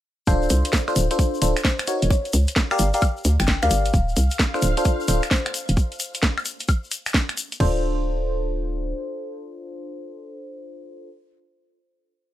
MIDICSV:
0, 0, Header, 1, 6, 480
1, 0, Start_track
1, 0, Key_signature, -1, "minor"
1, 0, Tempo, 458015
1, 286, Time_signature, 4, 2, 24, 8
1, 12929, End_track
2, 0, Start_track
2, 0, Title_t, "String machine"
2, 0, Program_c, 0, 50
2, 4123, Note_on_c, 0, 77, 82
2, 6057, Note_off_c, 0, 77, 0
2, 12929, End_track
3, 0, Start_track
3, 0, Title_t, "Kalimba"
3, 0, Program_c, 1, 108
3, 1725, Note_on_c, 1, 72, 96
3, 2028, Note_off_c, 1, 72, 0
3, 2207, Note_on_c, 1, 73, 94
3, 2383, Note_off_c, 1, 73, 0
3, 3560, Note_on_c, 1, 79, 96
3, 3685, Note_off_c, 1, 79, 0
3, 3800, Note_on_c, 1, 77, 95
3, 4187, Note_off_c, 1, 77, 0
3, 5566, Note_on_c, 1, 72, 97
3, 5868, Note_off_c, 1, 72, 0
3, 12929, End_track
4, 0, Start_track
4, 0, Title_t, "FM electric piano"
4, 0, Program_c, 2, 5
4, 287, Note_on_c, 2, 62, 103
4, 287, Note_on_c, 2, 65, 96
4, 287, Note_on_c, 2, 69, 95
4, 287, Note_on_c, 2, 72, 118
4, 860, Note_off_c, 2, 62, 0
4, 860, Note_off_c, 2, 65, 0
4, 860, Note_off_c, 2, 69, 0
4, 860, Note_off_c, 2, 72, 0
4, 921, Note_on_c, 2, 69, 76
4, 922, Note_on_c, 2, 62, 85
4, 922, Note_on_c, 2, 65, 76
4, 922, Note_on_c, 2, 72, 92
4, 1107, Note_off_c, 2, 62, 0
4, 1107, Note_off_c, 2, 69, 0
4, 1108, Note_off_c, 2, 65, 0
4, 1108, Note_off_c, 2, 72, 0
4, 1163, Note_on_c, 2, 62, 88
4, 1163, Note_on_c, 2, 65, 81
4, 1163, Note_on_c, 2, 69, 80
4, 1163, Note_on_c, 2, 72, 101
4, 1466, Note_off_c, 2, 62, 0
4, 1467, Note_off_c, 2, 65, 0
4, 1467, Note_off_c, 2, 69, 0
4, 1467, Note_off_c, 2, 72, 0
4, 1486, Note_on_c, 2, 65, 77
4, 1487, Note_on_c, 2, 62, 84
4, 1487, Note_on_c, 2, 69, 77
4, 1487, Note_on_c, 2, 72, 92
4, 1645, Note_off_c, 2, 62, 0
4, 1645, Note_off_c, 2, 65, 0
4, 1645, Note_off_c, 2, 69, 0
4, 1645, Note_off_c, 2, 72, 0
4, 1967, Note_on_c, 2, 63, 88
4, 1967, Note_on_c, 2, 73, 96
4, 1968, Note_on_c, 2, 66, 81
4, 1968, Note_on_c, 2, 70, 81
4, 2177, Note_off_c, 2, 63, 0
4, 2177, Note_off_c, 2, 70, 0
4, 2177, Note_off_c, 2, 73, 0
4, 2178, Note_off_c, 2, 66, 0
4, 2842, Note_on_c, 2, 70, 93
4, 2843, Note_on_c, 2, 67, 103
4, 2843, Note_on_c, 2, 74, 92
4, 2843, Note_on_c, 2, 77, 111
4, 3028, Note_off_c, 2, 67, 0
4, 3028, Note_off_c, 2, 70, 0
4, 3028, Note_off_c, 2, 74, 0
4, 3028, Note_off_c, 2, 77, 0
4, 3083, Note_on_c, 2, 67, 95
4, 3083, Note_on_c, 2, 70, 91
4, 3083, Note_on_c, 2, 74, 89
4, 3083, Note_on_c, 2, 77, 106
4, 3172, Note_off_c, 2, 67, 0
4, 3172, Note_off_c, 2, 70, 0
4, 3172, Note_off_c, 2, 74, 0
4, 3172, Note_off_c, 2, 77, 0
4, 3802, Note_on_c, 2, 67, 90
4, 3802, Note_on_c, 2, 70, 81
4, 3802, Note_on_c, 2, 74, 80
4, 3802, Note_on_c, 2, 77, 98
4, 4116, Note_off_c, 2, 67, 0
4, 4116, Note_off_c, 2, 70, 0
4, 4116, Note_off_c, 2, 74, 0
4, 4116, Note_off_c, 2, 77, 0
4, 4762, Note_on_c, 2, 62, 84
4, 4762, Note_on_c, 2, 65, 76
4, 4762, Note_on_c, 2, 69, 76
4, 4762, Note_on_c, 2, 72, 93
4, 4948, Note_off_c, 2, 62, 0
4, 4948, Note_off_c, 2, 65, 0
4, 4948, Note_off_c, 2, 69, 0
4, 4948, Note_off_c, 2, 72, 0
4, 5003, Note_on_c, 2, 62, 89
4, 5003, Note_on_c, 2, 65, 82
4, 5003, Note_on_c, 2, 69, 80
4, 5003, Note_on_c, 2, 72, 102
4, 5307, Note_off_c, 2, 62, 0
4, 5307, Note_off_c, 2, 65, 0
4, 5307, Note_off_c, 2, 69, 0
4, 5307, Note_off_c, 2, 72, 0
4, 5327, Note_on_c, 2, 65, 76
4, 5327, Note_on_c, 2, 69, 78
4, 5327, Note_on_c, 2, 72, 94
4, 5328, Note_on_c, 2, 62, 83
4, 5485, Note_off_c, 2, 62, 0
4, 5485, Note_off_c, 2, 65, 0
4, 5485, Note_off_c, 2, 69, 0
4, 5485, Note_off_c, 2, 72, 0
4, 7967, Note_on_c, 2, 62, 88
4, 7967, Note_on_c, 2, 65, 81
4, 7967, Note_on_c, 2, 69, 81
4, 7968, Note_on_c, 2, 72, 100
4, 11626, Note_off_c, 2, 62, 0
4, 11626, Note_off_c, 2, 65, 0
4, 11627, Note_off_c, 2, 69, 0
4, 11627, Note_off_c, 2, 72, 0
4, 12929, End_track
5, 0, Start_track
5, 0, Title_t, "FM bass"
5, 0, Program_c, 3, 39
5, 287, Note_on_c, 3, 26, 101
5, 505, Note_off_c, 3, 26, 0
5, 527, Note_on_c, 3, 36, 101
5, 662, Note_off_c, 3, 36, 0
5, 1008, Note_on_c, 3, 26, 99
5, 1142, Note_off_c, 3, 26, 0
5, 1487, Note_on_c, 3, 26, 84
5, 1622, Note_off_c, 3, 26, 0
5, 2123, Note_on_c, 3, 27, 92
5, 2196, Note_off_c, 3, 27, 0
5, 2448, Note_on_c, 3, 37, 102
5, 2583, Note_off_c, 3, 37, 0
5, 2927, Note_on_c, 3, 31, 97
5, 3062, Note_off_c, 3, 31, 0
5, 3406, Note_on_c, 3, 38, 99
5, 3541, Note_off_c, 3, 38, 0
5, 3561, Note_on_c, 3, 31, 105
5, 3761, Note_off_c, 3, 31, 0
5, 3803, Note_on_c, 3, 38, 100
5, 3876, Note_off_c, 3, 38, 0
5, 3885, Note_on_c, 3, 31, 87
5, 4104, Note_off_c, 3, 31, 0
5, 4126, Note_on_c, 3, 26, 102
5, 4344, Note_off_c, 3, 26, 0
5, 4367, Note_on_c, 3, 36, 101
5, 4502, Note_off_c, 3, 36, 0
5, 4846, Note_on_c, 3, 26, 96
5, 4981, Note_off_c, 3, 26, 0
5, 5327, Note_on_c, 3, 26, 84
5, 5462, Note_off_c, 3, 26, 0
5, 5963, Note_on_c, 3, 27, 94
5, 6036, Note_off_c, 3, 27, 0
5, 7966, Note_on_c, 3, 26, 99
5, 9365, Note_off_c, 3, 26, 0
5, 12929, End_track
6, 0, Start_track
6, 0, Title_t, "Drums"
6, 286, Note_on_c, 9, 36, 117
6, 288, Note_on_c, 9, 82, 55
6, 391, Note_off_c, 9, 36, 0
6, 393, Note_off_c, 9, 82, 0
6, 442, Note_on_c, 9, 82, 27
6, 521, Note_off_c, 9, 82, 0
6, 521, Note_on_c, 9, 82, 86
6, 525, Note_on_c, 9, 42, 109
6, 626, Note_off_c, 9, 82, 0
6, 630, Note_off_c, 9, 42, 0
6, 681, Note_on_c, 9, 42, 68
6, 686, Note_on_c, 9, 82, 36
6, 764, Note_on_c, 9, 38, 117
6, 766, Note_off_c, 9, 82, 0
6, 766, Note_on_c, 9, 36, 122
6, 766, Note_on_c, 9, 82, 59
6, 786, Note_off_c, 9, 42, 0
6, 869, Note_off_c, 9, 38, 0
6, 871, Note_off_c, 9, 36, 0
6, 871, Note_off_c, 9, 82, 0
6, 921, Note_on_c, 9, 26, 59
6, 928, Note_on_c, 9, 82, 27
6, 1005, Note_on_c, 9, 42, 116
6, 1006, Note_off_c, 9, 82, 0
6, 1006, Note_on_c, 9, 82, 97
6, 1025, Note_off_c, 9, 26, 0
6, 1110, Note_off_c, 9, 42, 0
6, 1111, Note_off_c, 9, 82, 0
6, 1161, Note_on_c, 9, 42, 66
6, 1164, Note_on_c, 9, 82, 40
6, 1245, Note_off_c, 9, 42, 0
6, 1245, Note_on_c, 9, 42, 37
6, 1246, Note_on_c, 9, 36, 120
6, 1250, Note_off_c, 9, 82, 0
6, 1250, Note_on_c, 9, 82, 58
6, 1350, Note_off_c, 9, 36, 0
6, 1350, Note_off_c, 9, 42, 0
6, 1355, Note_off_c, 9, 82, 0
6, 1408, Note_on_c, 9, 82, 27
6, 1485, Note_on_c, 9, 42, 119
6, 1489, Note_off_c, 9, 82, 0
6, 1489, Note_on_c, 9, 82, 91
6, 1590, Note_off_c, 9, 42, 0
6, 1594, Note_off_c, 9, 82, 0
6, 1641, Note_on_c, 9, 26, 72
6, 1641, Note_on_c, 9, 42, 67
6, 1643, Note_on_c, 9, 82, 41
6, 1725, Note_on_c, 9, 36, 119
6, 1725, Note_on_c, 9, 38, 119
6, 1730, Note_off_c, 9, 82, 0
6, 1730, Note_on_c, 9, 82, 54
6, 1745, Note_off_c, 9, 26, 0
6, 1745, Note_off_c, 9, 42, 0
6, 1830, Note_off_c, 9, 36, 0
6, 1830, Note_off_c, 9, 38, 0
6, 1835, Note_off_c, 9, 82, 0
6, 1875, Note_on_c, 9, 82, 24
6, 1880, Note_on_c, 9, 26, 77
6, 1880, Note_on_c, 9, 42, 56
6, 1960, Note_off_c, 9, 82, 0
6, 1960, Note_on_c, 9, 82, 84
6, 1965, Note_off_c, 9, 42, 0
6, 1965, Note_on_c, 9, 42, 114
6, 1985, Note_off_c, 9, 26, 0
6, 2065, Note_off_c, 9, 82, 0
6, 2069, Note_off_c, 9, 42, 0
6, 2121, Note_on_c, 9, 42, 70
6, 2121, Note_on_c, 9, 82, 38
6, 2206, Note_on_c, 9, 36, 124
6, 2211, Note_off_c, 9, 82, 0
6, 2211, Note_on_c, 9, 82, 49
6, 2225, Note_off_c, 9, 42, 0
6, 2311, Note_off_c, 9, 36, 0
6, 2316, Note_off_c, 9, 82, 0
6, 2361, Note_on_c, 9, 42, 37
6, 2363, Note_on_c, 9, 82, 26
6, 2441, Note_off_c, 9, 82, 0
6, 2441, Note_on_c, 9, 82, 93
6, 2445, Note_off_c, 9, 42, 0
6, 2445, Note_on_c, 9, 42, 106
6, 2545, Note_off_c, 9, 82, 0
6, 2550, Note_off_c, 9, 42, 0
6, 2597, Note_on_c, 9, 82, 41
6, 2601, Note_on_c, 9, 42, 65
6, 2685, Note_on_c, 9, 38, 123
6, 2686, Note_on_c, 9, 36, 127
6, 2688, Note_off_c, 9, 82, 0
6, 2688, Note_on_c, 9, 82, 52
6, 2705, Note_off_c, 9, 42, 0
6, 2790, Note_off_c, 9, 36, 0
6, 2790, Note_off_c, 9, 38, 0
6, 2793, Note_off_c, 9, 82, 0
6, 2836, Note_on_c, 9, 82, 28
6, 2841, Note_on_c, 9, 26, 59
6, 2841, Note_on_c, 9, 76, 60
6, 2921, Note_off_c, 9, 82, 0
6, 2921, Note_on_c, 9, 82, 97
6, 2924, Note_on_c, 9, 42, 111
6, 2946, Note_off_c, 9, 26, 0
6, 2946, Note_off_c, 9, 76, 0
6, 3026, Note_off_c, 9, 82, 0
6, 3029, Note_off_c, 9, 42, 0
6, 3078, Note_on_c, 9, 82, 42
6, 3081, Note_on_c, 9, 42, 68
6, 3159, Note_off_c, 9, 82, 0
6, 3159, Note_on_c, 9, 82, 53
6, 3165, Note_off_c, 9, 42, 0
6, 3165, Note_on_c, 9, 42, 36
6, 3165, Note_on_c, 9, 76, 62
6, 3166, Note_on_c, 9, 36, 126
6, 3264, Note_off_c, 9, 82, 0
6, 3270, Note_off_c, 9, 36, 0
6, 3270, Note_off_c, 9, 42, 0
6, 3270, Note_off_c, 9, 76, 0
6, 3321, Note_on_c, 9, 82, 25
6, 3402, Note_off_c, 9, 82, 0
6, 3402, Note_on_c, 9, 82, 91
6, 3405, Note_on_c, 9, 42, 112
6, 3507, Note_off_c, 9, 82, 0
6, 3510, Note_off_c, 9, 42, 0
6, 3560, Note_on_c, 9, 26, 72
6, 3560, Note_on_c, 9, 42, 66
6, 3569, Note_on_c, 9, 82, 40
6, 3638, Note_off_c, 9, 82, 0
6, 3638, Note_on_c, 9, 82, 51
6, 3646, Note_on_c, 9, 36, 123
6, 3646, Note_on_c, 9, 38, 127
6, 3665, Note_off_c, 9, 26, 0
6, 3665, Note_off_c, 9, 42, 0
6, 3743, Note_off_c, 9, 82, 0
6, 3750, Note_off_c, 9, 36, 0
6, 3751, Note_off_c, 9, 38, 0
6, 3798, Note_on_c, 9, 82, 26
6, 3802, Note_on_c, 9, 26, 75
6, 3802, Note_on_c, 9, 42, 53
6, 3880, Note_off_c, 9, 82, 0
6, 3880, Note_on_c, 9, 82, 102
6, 3886, Note_off_c, 9, 42, 0
6, 3886, Note_on_c, 9, 42, 110
6, 3906, Note_off_c, 9, 26, 0
6, 3985, Note_off_c, 9, 82, 0
6, 3991, Note_off_c, 9, 42, 0
6, 4038, Note_on_c, 9, 82, 40
6, 4041, Note_on_c, 9, 42, 68
6, 4126, Note_off_c, 9, 82, 0
6, 4126, Note_on_c, 9, 36, 123
6, 4126, Note_on_c, 9, 82, 55
6, 4146, Note_off_c, 9, 42, 0
6, 4230, Note_off_c, 9, 36, 0
6, 4230, Note_off_c, 9, 82, 0
6, 4282, Note_on_c, 9, 82, 25
6, 4365, Note_on_c, 9, 42, 102
6, 4366, Note_off_c, 9, 82, 0
6, 4366, Note_on_c, 9, 82, 99
6, 4470, Note_off_c, 9, 42, 0
6, 4471, Note_off_c, 9, 82, 0
6, 4514, Note_on_c, 9, 82, 45
6, 4522, Note_on_c, 9, 42, 63
6, 4605, Note_on_c, 9, 38, 127
6, 4606, Note_on_c, 9, 36, 127
6, 4609, Note_off_c, 9, 82, 0
6, 4609, Note_on_c, 9, 82, 60
6, 4627, Note_off_c, 9, 42, 0
6, 4710, Note_off_c, 9, 38, 0
6, 4711, Note_off_c, 9, 36, 0
6, 4713, Note_off_c, 9, 82, 0
6, 4761, Note_on_c, 9, 26, 56
6, 4765, Note_on_c, 9, 82, 28
6, 4841, Note_off_c, 9, 82, 0
6, 4841, Note_on_c, 9, 82, 93
6, 4846, Note_on_c, 9, 42, 112
6, 4866, Note_off_c, 9, 26, 0
6, 4946, Note_off_c, 9, 82, 0
6, 4950, Note_off_c, 9, 42, 0
6, 5001, Note_on_c, 9, 42, 66
6, 5005, Note_on_c, 9, 82, 39
6, 5082, Note_off_c, 9, 82, 0
6, 5082, Note_on_c, 9, 82, 57
6, 5086, Note_on_c, 9, 36, 127
6, 5087, Note_off_c, 9, 42, 0
6, 5087, Note_on_c, 9, 42, 37
6, 5187, Note_off_c, 9, 82, 0
6, 5191, Note_off_c, 9, 36, 0
6, 5191, Note_off_c, 9, 42, 0
6, 5244, Note_on_c, 9, 82, 28
6, 5324, Note_off_c, 9, 82, 0
6, 5324, Note_on_c, 9, 82, 95
6, 5327, Note_on_c, 9, 42, 112
6, 5429, Note_off_c, 9, 82, 0
6, 5431, Note_off_c, 9, 42, 0
6, 5481, Note_on_c, 9, 82, 39
6, 5482, Note_on_c, 9, 26, 70
6, 5482, Note_on_c, 9, 42, 64
6, 5566, Note_on_c, 9, 36, 127
6, 5566, Note_on_c, 9, 38, 127
6, 5572, Note_off_c, 9, 82, 0
6, 5572, Note_on_c, 9, 82, 53
6, 5587, Note_off_c, 9, 26, 0
6, 5587, Note_off_c, 9, 42, 0
6, 5671, Note_off_c, 9, 36, 0
6, 5671, Note_off_c, 9, 38, 0
6, 5676, Note_off_c, 9, 82, 0
6, 5715, Note_on_c, 9, 82, 25
6, 5723, Note_on_c, 9, 26, 73
6, 5723, Note_on_c, 9, 42, 53
6, 5807, Note_off_c, 9, 42, 0
6, 5807, Note_on_c, 9, 42, 108
6, 5813, Note_off_c, 9, 82, 0
6, 5813, Note_on_c, 9, 82, 91
6, 5827, Note_off_c, 9, 26, 0
6, 5911, Note_off_c, 9, 42, 0
6, 5917, Note_off_c, 9, 82, 0
6, 5958, Note_on_c, 9, 82, 37
6, 5962, Note_on_c, 9, 42, 66
6, 6046, Note_on_c, 9, 36, 127
6, 6049, Note_off_c, 9, 82, 0
6, 6049, Note_on_c, 9, 82, 53
6, 6067, Note_off_c, 9, 42, 0
6, 6151, Note_off_c, 9, 36, 0
6, 6154, Note_off_c, 9, 82, 0
6, 6202, Note_on_c, 9, 42, 37
6, 6206, Note_on_c, 9, 82, 27
6, 6283, Note_off_c, 9, 82, 0
6, 6283, Note_on_c, 9, 82, 103
6, 6286, Note_off_c, 9, 42, 0
6, 6286, Note_on_c, 9, 42, 97
6, 6388, Note_off_c, 9, 82, 0
6, 6391, Note_off_c, 9, 42, 0
6, 6440, Note_on_c, 9, 82, 44
6, 6442, Note_on_c, 9, 42, 65
6, 6524, Note_off_c, 9, 82, 0
6, 6524, Note_on_c, 9, 82, 54
6, 6526, Note_on_c, 9, 38, 126
6, 6527, Note_on_c, 9, 36, 125
6, 6547, Note_off_c, 9, 42, 0
6, 6629, Note_off_c, 9, 82, 0
6, 6631, Note_off_c, 9, 36, 0
6, 6631, Note_off_c, 9, 38, 0
6, 6681, Note_on_c, 9, 26, 55
6, 6681, Note_on_c, 9, 76, 61
6, 6688, Note_on_c, 9, 82, 26
6, 6762, Note_off_c, 9, 82, 0
6, 6762, Note_on_c, 9, 82, 97
6, 6766, Note_on_c, 9, 42, 103
6, 6786, Note_off_c, 9, 26, 0
6, 6786, Note_off_c, 9, 76, 0
6, 6867, Note_off_c, 9, 82, 0
6, 6870, Note_off_c, 9, 42, 0
6, 6915, Note_on_c, 9, 82, 41
6, 6922, Note_on_c, 9, 42, 67
6, 7003, Note_off_c, 9, 82, 0
6, 7003, Note_on_c, 9, 82, 55
6, 7007, Note_off_c, 9, 42, 0
6, 7007, Note_on_c, 9, 36, 127
6, 7007, Note_on_c, 9, 42, 37
6, 7007, Note_on_c, 9, 76, 65
6, 7108, Note_off_c, 9, 82, 0
6, 7111, Note_off_c, 9, 36, 0
6, 7112, Note_off_c, 9, 42, 0
6, 7112, Note_off_c, 9, 76, 0
6, 7165, Note_on_c, 9, 82, 26
6, 7245, Note_off_c, 9, 82, 0
6, 7245, Note_on_c, 9, 82, 93
6, 7247, Note_on_c, 9, 42, 105
6, 7350, Note_off_c, 9, 82, 0
6, 7352, Note_off_c, 9, 42, 0
6, 7402, Note_on_c, 9, 82, 44
6, 7403, Note_on_c, 9, 26, 68
6, 7403, Note_on_c, 9, 42, 65
6, 7486, Note_on_c, 9, 38, 124
6, 7487, Note_on_c, 9, 36, 127
6, 7493, Note_off_c, 9, 82, 0
6, 7493, Note_on_c, 9, 82, 55
6, 7508, Note_off_c, 9, 26, 0
6, 7508, Note_off_c, 9, 42, 0
6, 7591, Note_off_c, 9, 38, 0
6, 7592, Note_off_c, 9, 36, 0
6, 7598, Note_off_c, 9, 82, 0
6, 7638, Note_on_c, 9, 82, 26
6, 7642, Note_on_c, 9, 26, 69
6, 7642, Note_on_c, 9, 42, 55
6, 7728, Note_off_c, 9, 42, 0
6, 7728, Note_on_c, 9, 42, 103
6, 7729, Note_off_c, 9, 82, 0
6, 7729, Note_on_c, 9, 82, 100
6, 7747, Note_off_c, 9, 26, 0
6, 7833, Note_off_c, 9, 42, 0
6, 7833, Note_off_c, 9, 82, 0
6, 7883, Note_on_c, 9, 42, 64
6, 7883, Note_on_c, 9, 82, 38
6, 7967, Note_on_c, 9, 36, 100
6, 7967, Note_on_c, 9, 49, 90
6, 7988, Note_off_c, 9, 42, 0
6, 7988, Note_off_c, 9, 82, 0
6, 8071, Note_off_c, 9, 36, 0
6, 8071, Note_off_c, 9, 49, 0
6, 12929, End_track
0, 0, End_of_file